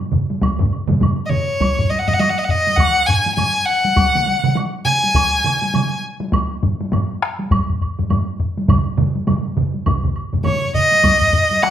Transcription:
0.12 taiko low-mid, taiko mid
0.30 taiko high
0.42 taiko, taiko high, high woodblock
0.59 taiko low-mid, taiko mid
0.73 high woodblock
0.89 taiko low-mid, taiko mid, taiko high
1.00 taiko low-mid, taiko mid, taiko high, high woodblock
1.26 violin D#5, taiko mid
1.30 violin C#5, taiko low-mid
1.61 taiko, taiko high, high woodblock
1.79 taiko low-mid
1.90 violin D#5, taiko high
1.99 violin F#5
2.08 violin D#5, taiko low-mid, taiko high
2.14 violin F#5
2.19 violin D#5, taiko high, high woodblock
2.30 violin F#5
2.38 violin D#5
2.44 violin F#5
2.49 violin D#5, taiko low-mid
2.67 taiko high
2.76 violin F#5, taiko, taiko high, high woodblock
3.06 violin G#5, taiko low-mid, high woodblock
3.26 taiko high
3.35 violin G#5, taiko low-mid, taiko high, high woodblock
3.65 violin F#5
3.85 taiko high
3.96 taiko, taiko high, high woodblock
4.15 taiko mid
4.26 taiko high
4.44 taiko mid, taiko high
4.55 taiko high, high woodblock
4.85 violin G#5, taiko mid
5.04 taiko high
5.14 taiko, taiko high, high woodblock
5.44 taiko mid, high woodblock
5.62 taiko high
5.74 taiko mid, taiko high, high woodblock
6.20 taiko high
6.32 taiko, taiko high, high woodblock
6.63 taiko low-mid, taiko high
6.81 taiko high
6.92 taiko low-mid, taiko high, high woodblock
7.22 taiko rim
7.39 taiko high
7.51 taiko, taiko low-mid, taiko high, high woodblock
7.70 taiko low-mid
7.81 taiko low-mid, high woodblock
7.99 taiko low-mid, taiko high
8.10 taiko low-mid, taiko high, high woodblock
8.40 taiko low-mid
8.57 taiko high
8.69 taiko, taiko low-mid, taiko mid, taiko high, high woodblock
8.98 taiko low-mid, taiko mid, taiko high
9.16 taiko high
9.27 taiko low-mid, taiko mid, taiko high, high woodblock
9.57 taiko low-mid, taiko mid
9.74 taiko high
9.86 taiko, taiko low-mid, taiko mid, taiko high, high woodblock
10.03 taiko low-mid, taiko mid
10.16 high woodblock
10.33 taiko low-mid, taiko mid, taiko high
10.44 violin C#5, taiko low-mid, taiko mid, taiko high, high woodblock
10.74 violin D#5, taiko low-mid, taiko mid
10.92 taiko high
11.04 taiko, taiko low-mid, taiko high, high woodblock
11.21 taiko low-mid
11.33 taiko low-mid
11.51 taiko high
11.62 violin F#5, taiko rim, taiko high, high woodblock

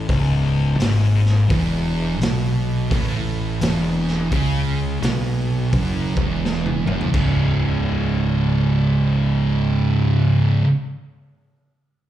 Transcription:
0.08 fingered electric bass C#1, distorted electric guitar C#2, kick, open hi-hat
0.79 fingered electric bass G#1, distorted electric guitar G#2, snare, open hi-hat
1.26 snare
1.49 fingered electric bass E1, distorted electric guitar E2, kick, open hi-hat
2.20 fingered electric bass B1, distorted electric guitar B2, snare, open hi-hat
2.90 fingered electric bass A1, distorted electric guitar A2, kick, open hi-hat
3.61 fingered electric bass E1, distorted electric guitar E2, snare, open hi-hat
4.08 snare
4.32 fingered electric bass C#2, distorted electric guitar C#3, kick, open hi-hat
5.02 fingered electric bass B1, distorted electric guitar B2, snare, open hi-hat
5.73 fingered electric bass F#1, distorted electric guitar F#2, kick, open hi-hat
6.17 fingered electric bass E1, distorted electric guitar E2, kick
6.45 snare
6.66 high tom
6.86 fingered electric bass F#1, distorted electric guitar F#2, mid tom
7.01 floor tom
7.12 fingered electric bass C#1, distorted electric guitar C#2 G#2 C#3, kick, crash

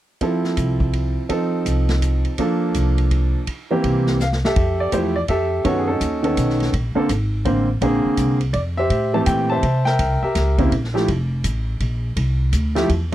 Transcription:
0.21 grand piano F3 C4 E4 A4, kick, ride
0.44 snare
0.57 upright bass C2, kick, hi-hat pedal, ride
0.80 kick
0.93 kick, ride
1.29 grand piano F3 C4 D#4 A4, kick, ride
1.65 upright bass C2, kick, hi-hat pedal, ride
1.89 snare, ride
2.02 kick, hi-hat pedal, ride
2.25 ride
2.38 grand piano F3 A#3 D4 A4, kick, ride
2.74 upright bass C2, kick, hi-hat pedal, ride
2.98 ride
3.11 kick, ride
3.47 kick, ride
3.71 grand piano E3 A#3 C4 G4
3.84 upright bass C2, kick, ride
4.07 snare
4.20 grand piano F5, snare, hi-hat pedal
4.32 snare
4.45 grand piano G4 A4 E5, snare
4.56 upright bass F2, kick, ride
4.80 grand piano D5
4.92 upright bass E2, grand piano F3 A3 E4 G4 C5, kick, hi-hat pedal, ride
5.16 grand piano D5
5.28 upright bass F2, grand piano G4 A4 E5, kick, ride
5.64 upright bass F#2, grand piano D#3 B3 C#4 F#4 A4 C#5, kick, ride
5.78 grand piano G#4
5.88 grand piano C#4 D#4 A4
6.00 upright bass D#2, kick, hi-hat pedal, ride
6.23 grand piano D#3 B3 C#4 A4, ride
6.37 upright bass B1, kick, hi-hat pedal, ride
6.49 snare
6.60 snare, ride
6.73 upright bass A#1, kick, ride
6.95 grand piano D3 A#3 C4 A4, muted upright bass stroke
7.09 upright bass G#1, kick, hi-hat pedal, ride
7.45 upright bass A1, grand piano D3 A#3 C4 C5, kick, ride
7.81 upright bass A#1, grand piano D3 A#3 C4 G#4, kick, ride
8.05 muted upright bass stroke
8.17 upright bass C2, kick, hi-hat pedal, ride
8.40 ride
8.53 upright bass F2, grand piano D5, kick, ride
8.77 grand piano G4 C5 E5
8.90 upright bass A2, kick, ride
9.14 grand piano E3 A3 C4 G4 A5
9.26 upright bass A#2, grand piano G5, kick, hi-hat pedal, ride
9.50 grand piano C5 E5 A5
9.63 upright bass C3, kick, ride
9.85 grand piano A#4 E5 G5, snare
9.99 upright bass C2, kick, ride
10.22 grand piano G4 A#4 E5, muted upright bass stroke
10.35 upright bass C#2, kick, snare, hi-hat pedal, ride
10.58 grand piano C#3 A#3 C4 E4, kick, ride
10.72 upright bass A#1, kick, ride
10.84 snare
10.94 grand piano F3 A3 E4 G4, snare
11.08 upright bass F1, kick, ride
11.44 upright bass A1, kick, hi-hat pedal, ride
11.80 upright bass A#1, kick, ride
12.16 upright bass C2, kick, ride
12.53 upright bass D2, kick, hi-hat pedal, ride
12.75 grand piano F3 A3 E4 G4, snare, ride
12.89 upright bass E2, kick, ride

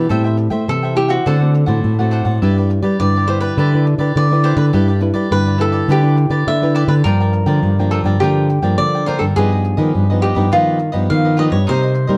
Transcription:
0.09 nylon-string guitar A2 G3 C4 E4, cavaquinho A4 C5 E5 G5
0.24 cavaquinho C5 E5 G5
0.37 muted cavaquinho stroke
0.50 nylon-string guitar A3, cavaquinho C5 E5 G5
0.68 nylon-string guitar C3 E3 G3 C4 E4, cavaquinho A4
0.83 cavaquinho C5 E5 G5
0.96 nylon-string guitar G3 C4 E4, cavaquinho G4 A4 C5 E5 G5
1.09 cavaquinho F#4 C5 E5 G5
1.26 nylon-string guitar D3 A3 C4 F#4, cavaquinho D4 A4 C5 D5 F#5
1.41 nylon-string guitar A3 C4 F#4
1.54 muted cavaquinho stroke
1.66 nylon-string guitar A2 A3 C4 F#4, cavaquinho C5 D5 F#5
1.84 nylon-string guitar A2
1.99 nylon-string guitar A3 C4 F#4, cavaquinho C5 D5 F#5
2.11 cavaquinho D4 C5 D5 F#5
2.25 nylon-string guitar A2, cavaquinho C5 D5 F#5
2.42 nylon-string guitar G2 G3 D4 E4 B4, cavaquinho E4 G4 B4 D5
2.58 cavaquinho G4 B4 D5
2.70 muted cavaquinho stroke
2.82 nylon-string guitar G3, cavaquinho G4 B4 D5
3.00 nylon-string guitar G2 D3 D4 E4 B4, cavaquinho D5
3.16 cavaquinho G4 B4 D5
3.27 nylon-string guitar D4 E4 B4, cavaquinho E4 G4 B4 C5 D5
3.41 cavaquinho G4 B4 D5
3.57 nylon-string guitar D3 G3, cavaquinho E4 G4 B4 D5
3.74 nylon-string guitar D4 E4 B4
3.86 muted cavaquinho stroke
3.98 nylon-string guitar D3, cavaquinho G4 B4 D5
4.16 nylon-string guitar D3 D4 E4 B4, cavaquinho D5
4.31 nylon-string guitar D4 E4 B4, cavaquinho G4 B4 D5
4.44 cavaquinho E4 G4 B4 C5 D5
4.57 nylon-string guitar D3, cavaquinho B4 D5
4.73 nylon-string guitar G2 G3 D4 E4 B4, cavaquinho E4 G4 B4 D5
4.88 cavaquinho G4 B4 D5
5.01 nylon-string guitar D4 E4 B4, muted cavaquinho stroke
5.14 nylon-string guitar G3, cavaquinho G4 B4 D5
5.31 nylon-string guitar G2 D3 D4 E4 B4, cavaquinho B4
5.46 cavaquinho G4 B4 D5
5.58 nylon-string guitar D4 E4 B4, cavaquinho E4 G4 A4 B4 D5
5.72 cavaquinho G4 B4 D5
5.88 nylon-string guitar D3 G3, cavaquinho E4 G4 B4 D5
6.03 nylon-string guitar D4 E4 B4
6.17 muted cavaquinho stroke
6.30 nylon-string guitar D3, cavaquinho G4 B4 D5
6.47 nylon-string guitar D3, cavaquinho E5
6.62 nylon-string guitar D4 E4 B4, cavaquinho G4 B4 D5
6.75 cavaquinho E4 G4 B4 D5
6.88 nylon-string guitar D3, cavaquinho G4 B4 D5
7.04 nylon-string guitar G2 F3 A#3 D4, cavaquinho F4 A#4 D5 G5
7.20 cavaquinho A#4 D5 G5
7.33 muted cavaquinho stroke
7.46 nylon-string guitar D3 F3 A#3 D4, cavaquinho A#4 D5 G5
7.63 nylon-string guitar G2 D3
7.79 nylon-string guitar F3 A#3 D4, cavaquinho A#4 D5 G5
7.91 cavaquinho F4 A4 A#4 D5 G5
8.04 nylon-string guitar G2 F3 A#3 D4, cavaquinho A#4 D5 G5
8.20 nylon-string guitar G2 D3 F3 A#3 D4, cavaquinho F4 G4 A#4 D5 G5
8.49 muted cavaquinho stroke
8.62 nylon-string guitar G2 F3 A#3 D4, cavaquinho A#4 D5 G5
8.78 nylon-string guitar D3, cavaquinho D5
8.95 cavaquinho A#4 D5 G5
9.06 nylon-string guitar F3 A#3 D4, cavaquinho F4 A#4 C5 D5 G5
9.19 nylon-string guitar G2, cavaquinho A4 A#4 D5 G5
9.36 nylon-string guitar G2 F3 B3 D#4, cavaquinho F4 G4 G#4 B4 D#5
9.52 cavaquinho G4 B4 D#5
9.64 muted cavaquinho stroke
9.77 nylon-string guitar D#3 F3 B3 D#4, cavaquinho G4 B4 D#5
9.95 nylon-string guitar G2
10.10 nylon-string guitar F3 B3 D#4, cavaquinho G4 B4 D#5
10.22 cavaquinho F4 G4 B4 D#5
10.35 nylon-string guitar G2 F3 B3 D#4, cavaquinho G4 B4 D#5
10.52 nylon-string guitar G2 D#3 F3 B3 D#4, cavaquinho F4 G4 B4 D#5
10.79 muted cavaquinho stroke
10.92 nylon-string guitar G2 F3 B3, cavaquinho G4 B4 D#5
10.96 nylon-string guitar D#4
11.10 nylon-string guitar G2 D#3, cavaquinho F5
11.25 cavaquinho G4 B4 D#5
11.37 nylon-string guitar F3 B3 D#4, cavaquinho F4 G4 B4 D#5
11.50 nylon-string guitar G2, cavaquinho G4 B4 C#5 D#5
11.67 nylon-string guitar C3 G3 A#3 D#4, cavaquinho D#4 A#4 C5 D#5
11.82 cavaquinho A#4 C5 D#5
11.95 muted cavaquinho stroke
12.07 nylon-string guitar G3 A#3 D#4, cavaquinho A#4 C5 D#5

